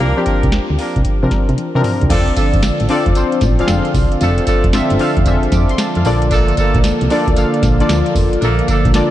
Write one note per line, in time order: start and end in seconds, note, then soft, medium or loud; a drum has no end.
0.00 0.13 C2 loud
0.00 0.17 F3 loud
0.00 0.20 A#3 medium
0.00 0.17 C4 medium
0.00 0.17 D4 medium
0.00 0.20 D4 medium
0.00 0.20 F4 medium
0.00 0.18 G4 loud
0.00 0.20 A#4 loud
0.00 1.24 A#4 loud
0.00 closed hi-hat medium
0.17 1.05 F3 medium
0.17 1.05 C4 medium
0.17 1.05 D4 medium
0.17 1.05 G4 loud
0.26 0.47 A#3 medium
0.26 0.46 D4 medium
0.26 0.47 F4 medium
0.26 0.47 A#4 medium
0.26 kick medium
0.26 closed hi-hat medium
0.43 0.50 C2 medium
0.43 kick loud
0.43 closed hi-hat medium
0.52 snare loud
0.52 closed hi-hat medium
0.70 0.77 D2 medium
0.79 0.99 A#3 medium
0.79 0.99 D4 medium
0.79 0.99 F4 medium
0.79 0.99 A#4 medium
0.79 open hi-hat medium
0.96 1.03 C2 medium
0.96 kick medium
0.96 closed hi-hat soft
1.05 kick medium
1.05 closed hi-hat medium
1.23 1.29 C3 medium
1.23 1.66 F3 medium
1.23 1.66 C4 medium
1.23 1.66 D4 medium
1.23 1.67 A#4 medium
1.31 kick loud
1.31 snare medium
1.31 closed hi-hat medium
1.49 1.55 C3 medium
1.49 closed hi-hat medium
1.58 closed hi-hat medium
1.58 high tom medium
1.75 1.82 C3 medium
1.75 1.79 E3 medium
1.75 2.09 C4 medium
1.75 2.09 D4 medium
1.75 2.11 A#4 loud
1.75 mid tom medium
1.81 2.13 F3 medium
1.81 mid tom medium
1.81 open hi-hat medium
2.01 2.08 C2 medium
2.01 closed hi-hat medium
2.01 floor tom medium
2.10 2.29 F1 loud
2.10 9.11 D3 medium
2.10 9.11 F3 medium
2.10 2.31 A3 loud
2.10 6.01 C4 medium
2.10 2.82 C4 medium
2.10 2.31 D4 medium
2.10 2.82 D4 medium
2.10 6.01 F4 medium
2.10 2.31 F4 medium
2.10 2.82 F4 medium
2.10 9.11 A4 medium
2.10 2.31 A4 loud
2.10 2.82 A4 medium
2.10 2.83 D5 loud
2.10 kick loud
2.10 closed hi-hat medium
2.10 crash loud
2.10 tambourine medium
2.28 closed hi-hat medium
2.36 2.57 A3 medium
2.36 2.57 D4 medium
2.36 2.57 F4 medium
2.36 2.57 A4 medium
2.36 kick medium
2.36 closed hi-hat medium
2.36 tambourine medium
2.54 2.60 G1 medium
2.54 kick loud
2.54 closed hi-hat medium
2.63 snare loud
2.63 closed hi-hat medium
2.63 tambourine loud
2.80 2.87 A1 medium
2.80 closed hi-hat medium
2.89 3.10 A3 medium
2.89 3.13 C4 loud
2.89 3.10 D4 medium
2.89 3.13 D4 medium
2.89 3.10 F4 medium
2.89 3.13 F4 medium
2.89 3.10 A4 medium
2.89 3.14 A4 medium
2.89 3.14 D5 loud
2.89 open hi-hat medium
3.06 3.13 F1 medium
3.06 kick loud
3.06 closed hi-hat medium
3.15 3.53 C4 medium
3.15 3.53 D4 medium
3.15 3.53 F4 medium
3.15 3.53 A4 medium
3.15 3.53 C5 medium
3.15 closed hi-hat medium
3.15 tambourine medium
3.32 closed hi-hat medium
3.41 3.61 A1 loud
3.41 kick loud
3.41 snare medium
3.41 closed hi-hat medium
3.41 tambourine medium
3.59 4.47 C4 medium
3.59 4.47 D4 medium
3.59 4.47 F4 medium
3.59 3.64 G#4 medium
3.59 4.48 F5 loud
3.59 closed hi-hat medium
3.67 3.81 F1 medium
3.67 4.51 A4 medium
3.67 snare loud
3.67 closed hi-hat medium
3.67 tambourine loud
3.85 closed hi-hat medium
3.94 4.07 C2 medium
3.94 kick medium
3.94 open hi-hat medium
3.94 tambourine medium
4.12 closed hi-hat medium
4.21 4.40 F1 loud
4.21 4.42 A3 medium
4.21 4.41 D4 medium
4.21 4.41 F4 medium
4.21 4.42 A4 loud
4.21 closed hi-hat medium
4.21 tambourine medium
4.38 closed hi-hat medium
4.47 4.68 A3 medium
4.47 4.68 D4 medium
4.47 4.68 F4 medium
4.47 4.68 A4 medium
4.47 kick medium
4.47 closed hi-hat medium
4.47 tambourine medium
4.64 4.71 F1 medium
4.64 kick loud
4.64 closed hi-hat medium
4.73 4.98 C4 medium
4.73 4.98 D4 medium
4.73 4.98 F4 medium
4.73 4.98 A4 medium
4.73 4.98 E5 loud
4.73 snare loud
4.73 closed hi-hat medium
4.73 tambourine loud
4.90 4.98 G1 loud
4.90 closed hi-hat medium
4.99 5.21 A3 medium
4.99 5.24 C4 medium
4.99 5.20 D4 medium
4.99 5.24 D4 medium
4.99 5.20 F4 medium
4.99 5.24 F4 medium
4.99 5.21 A4 medium
4.99 5.24 A4 medium
4.99 5.24 F5 loud
4.99 open hi-hat medium
5.17 5.24 F1 loud
5.17 kick loud
5.17 closed hi-hat medium
5.26 5.38 F1 loud
5.26 5.74 C4 medium
5.26 5.74 D4 medium
5.26 5.75 F4 medium
5.26 5.35 G#4 medium
5.26 5.53 E5 loud
5.26 kick medium
5.26 closed hi-hat medium
5.26 tambourine medium
5.34 5.78 A4 medium
5.43 closed hi-hat medium
5.52 5.65 F2 loud
5.52 5.69 D6 medium
5.52 kick loud
5.52 snare medium
5.52 closed hi-hat medium
5.52 tambourine medium
5.69 5.79 C6 medium
5.69 closed hi-hat medium
5.78 5.95 A5 medium
5.78 snare loud
5.78 closed hi-hat medium
5.78 tambourine loud
5.95 6.03 F2 medium
5.95 6.21 F5 medium
5.95 closed hi-hat medium
6.05 6.44 A#1 loud
6.05 9.11 A#3 medium
6.05 7.01 A#3 medium
6.05 7.01 D4 medium
6.05 9.11 F4 medium
6.05 7.01 F4 medium
6.05 7.01 A4 medium
6.05 7.01 D5 loud
6.05 open hi-hat medium
6.05 tambourine medium
6.22 closed hi-hat medium
6.31 6.52 A3 medium
6.31 6.52 A#3 loud
6.31 6.52 D4 medium
6.31 6.52 A4 loud
6.31 kick loud
6.31 closed hi-hat medium
6.31 tambourine medium
6.48 closed hi-hat medium
6.57 6.78 A3 medium
6.57 6.78 A#3 medium
6.57 6.78 D4 medium
6.57 6.78 A4 medium
6.57 kick medium
6.57 closed hi-hat medium
6.57 tambourine medium
6.75 6.82 A#1 medium
6.75 kick loud
6.75 closed hi-hat medium
6.84 6.91 C2 soft
6.84 snare loud
6.84 closed hi-hat medium
6.84 tambourine loud
7.01 7.08 C2 medium
7.01 closed hi-hat medium
7.10 7.31 A3 medium
7.10 7.31 A#3 medium
7.10 7.34 A#3 loud
7.10 7.31 D4 medium
7.10 7.35 D4 medium
7.10 7.35 F4 medium
7.10 7.31 A4 medium
7.10 7.35 A4 medium
7.10 7.35 D5 loud
7.10 open hi-hat medium
7.27 7.34 D2 loud
7.27 kick loud
7.27 closed hi-hat medium
7.36 7.74 A#3 medium
7.36 7.74 D4 medium
7.36 7.74 F4 medium
7.36 7.74 A4 medium
7.36 7.74 F5 medium
7.36 closed hi-hat medium
7.36 tambourine medium
7.54 closed hi-hat medium
7.63 7.82 A#1 loud
7.63 kick loud
7.63 snare medium
7.63 closed hi-hat medium
7.63 tambourine medium
7.80 8.68 A#3 loud
7.80 8.68 D4 medium
7.80 8.68 F4 medium
7.80 8.68 A4 medium
7.80 8.68 D5 loud
7.80 closed hi-hat medium
7.89 8.02 D2 medium
7.89 snare loud
7.89 closed hi-hat medium
7.89 tambourine loud
8.06 closed hi-hat medium
8.15 8.28 F1 medium
8.15 kick medium
8.15 open hi-hat medium
8.15 tambourine medium
8.33 closed hi-hat medium
8.41 8.61 A#1 loud
8.41 8.62 A3 medium
8.41 8.62 A#3 medium
8.41 8.62 D4 medium
8.41 8.62 A4 loud
8.41 closed hi-hat medium
8.41 tambourine medium
8.59 closed hi-hat medium
8.68 8.89 A3 medium
8.68 8.89 A#3 medium
8.68 8.89 D4 medium
8.68 8.89 A4 medium
8.68 kick medium
8.68 closed hi-hat medium
8.68 tambourine medium
8.85 8.92 A#1 medium
8.85 kick loud
8.85 closed hi-hat medium
8.94 9.11 A#3 medium
8.94 9.11 D4 medium
8.94 9.11 F4 medium
8.94 9.11 A4 medium
8.94 9.11 D5 loud
8.94 snare loud
8.94 closed hi-hat medium
8.94 tambourine loud